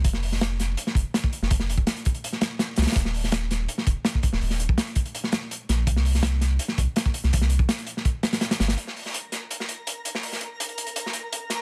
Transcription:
<<
  \new Staff \with { instrumentName = "Synth texture" } { \time 4/4 \key c \phrygian \tempo 4 = 165 r1 | r1 | r1 | r1 |
r1 | r1 | <bes' bes''>1~ | <bes' bes''>1 | }
  \new Staff \with { instrumentName = "Sub bass" } { \clef bass \time 4/4 \key c \phrygian f,,2 r8 f,,16 r4 f,,16 | f,,8. ees,,16 r2 r8 c,16 r16 | ees,,2 r8 ees,,16 r4 ees,,16 | ees,,8. des,16 r2 r8 bes,,8 |
c,2 r8 c,16 r4 c,16 | c,8. bes,,16 r2 r8 g,,8 | r1 | r1 | }
  \new DrumStaff \with { instrumentName = "Drums" } \drummode { \time 4/4 <hh bd>16 sn16 hho16 sn16 <hh sn>8 <hh sn>8 hh16 sn16 <hh bd>8 <hh sn>16 bd16 hh16 sn16 | <hh bd>16 sn16 hh16 bd16 <hh sn>16 hh16 <hh bd>16 hh16 hh16 sn16 <hh sn>8 <hh sn>8 <hh sn>32 <hh sn>32 <hh sn>32 <hh sn>32 | <hh bd>16 sn16 hho16 sn16 <hh sn>8 <hh sn>8 hh16 sn16 <hh bd>8 <hh sn>16 bd16 <hh bd>16 sn16 | hho16 sn16 hh16 bd16 <hh sn>16 hh16 <hh bd>16 hh16 hh16 sn16 <hh sn>8 hh8 <hh sn>8 |
<hh bd>16 sn16 hho16 sn16 <hh sn>8 <hh sn>8 hh16 sn16 <hh bd>8 <hh sn>16 bd16 hh16 sn16 | <hh bd>16 sn16 hh16 bd16 <hh sn>16 hh16 hh16 sn16 <hh bd>8 <hh sn>16 <hh sn>16 <hh sn>16 <hh sn>16 <hh sn>16 <hh sn>16 | hh16 sn16 hho16 sn16 hh8 <hh sn>8 hh16 sn16 hh8 hh8 hh16 sn16 | hho16 sn16 hh8 hh16 hh16 hh16 hh16 hh16 sn16 hh8 hh8 <hh sn>8 | }
>>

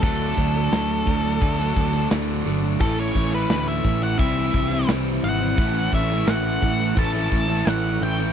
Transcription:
<<
  \new Staff \with { instrumentName = "Lead electric guitar" } { \time 4/4 \key a \mixolydian \tempo 4 = 86 a'2. r4 | a'16 cis''8 b'8 e''8 fis''16 e''4 r8 fis''8~ | fis''8 e''8 fis''4 a''4 fis''8 g''8 | }
  \new Staff \with { instrumentName = "Overdriven electric guitar" } { \time 4/4 \key a \mixolydian <d fis a d'>8 <d fis a d'>16 <fis a d'>16 <d fis a d'>8 <d fis a d'>16 <fis a d'>8 <fis a d'>8 <fis a d'>16 <d fis a d'>8 <d fis a d'>16 <fis a d'>16 | <a, e a cis' e'>8 <e a cis' e'>16 <a cis' e'>16 <a, e a cis' e'>8 <e a cis' e'>16 <a cis' e'>16 <c e g c' e'>16 <g c' e'>8 <g c' e'>16 <c e g c' e'>8 <e g c' e'>16 <g c' e'>16 | <a, e a cis' e'>8 <e a cis' e'>16 <a cis' e'>16 <a, e a cis' e'>8 <e a cis' e'>16 <a cis' e'>8 <a cis' e'>8 <a cis' e'>16 <a, e a cis' e'>8 <e a cis' e'>16 <a cis' e'>16 | }
  \new Staff \with { instrumentName = "Overdriven electric guitar" } { \time 4/4 \key a \mixolydian <d fis a d'>2 <d fis a d'>2 | <a, e a cis' e'>2 <c e g c' e'>2 | <a, e a cis' e'>2 <a, e a cis' e'>2 | }
  \new Staff \with { instrumentName = "Picked electric bass" } { \clef bass \time 4/4 \key a \mixolydian d,8 d,8 d,8 d,8 d,8 d,8 d,8 g,,8 | a,,8 a,,8 d,8 a,,8 c,8 c,8 c,8 gis,,8 | a,,8 a,,8 a,,8 a,,8 a,,8 a,,8 a,,8 a,,8 | }
  \new DrumStaff \with { instrumentName = "Drums" } \drummode { \time 4/4 <hho bd>8 bd8 <hho sn>8 bd8 <hho bd>8 bd8 <hho sn>4 | <hho bd>8 bd8 <hho sn>8 bd8 <hho bd>8 bd8 <hho sn>4 | <hho bd>8 bd8 <hho sn>8 bd16 sn16 <hho bd>8 bd8 <hho sn>4 | }
>>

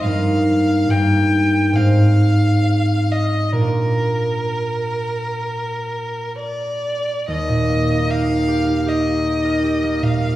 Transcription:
<<
  \new Staff \with { instrumentName = "Violin" } { \time 4/4 \key ees \major \tempo 4 = 70 f''4 g''4 f''4. ees''8 | bes'2. d''4 | ees''4 f''4 ees''4. f''8 | }
  \new Staff \with { instrumentName = "Harp" } { \time 4/4 \key ees \major << { r1 | r1 | ees,16 bes,16 bes16 ees'16 g'16 bes'16 g'16 ees'16 g'16 ees'16 g'16 bes'16 g'16 bes16 bes,16 bes16 | } \\ { <g, bes ees' bes'>4 <g, bes ees' bes'>4 <aes, c' ees' aes'>2 | <bes, bes d' f'>1~ | <bes, bes d' f'>1 | } >> }
>>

